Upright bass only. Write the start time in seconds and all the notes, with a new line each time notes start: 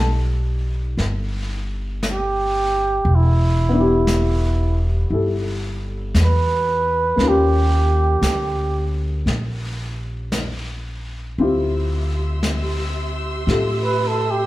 Already playing: B1
0.97 G1
3.05 E1
5.10 G1
6.14 E2
7.17 D#2
8.22 D2
9.26 A#1
11.38 D2
13.47 A2